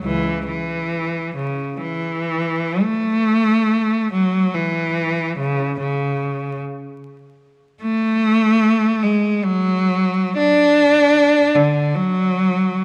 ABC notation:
X:1
M:3/4
L:1/8
Q:1/4=72
K:A
V:1 name="Cello" clef=bass
[C,,E,] E,2 C, E,2 | A,3 F, E,2 | C, C,2 z3 | [K:F#m] A,3 G, F,2 |
D3 D, F,2 |]